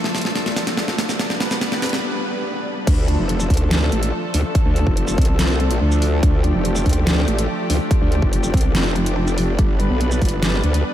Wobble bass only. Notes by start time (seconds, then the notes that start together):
2.87 D2
3.19 F1
3.50 D2
3.92 A1
4.34 D2
4.66 D2
4.87 F1
5.18 C2
5.39 C2
5.81 D2
6.23 D2
6.55 F1
6.86 D2
7.28 A1
7.70 D2
8.01 D2
8.22 F1
8.54 C2
8.75 F1
9.59 G1
9.90 B1
10.22 G1
10.64 D2